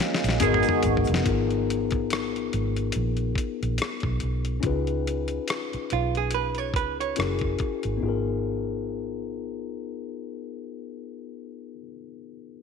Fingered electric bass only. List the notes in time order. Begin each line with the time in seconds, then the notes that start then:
0.24 A#1
0.43 G#1
0.85 G#1
1.09 F1
1.26 G#1
2.54 G#1
2.96 A#1
3.63 A#1
4.04 B1
4.23 B1
4.64 C#2
5.74 muted fingered electric bass stroke
5.92 B1
6.75 C#2
7.19 F#1
7.85 G#1
8.03 G#1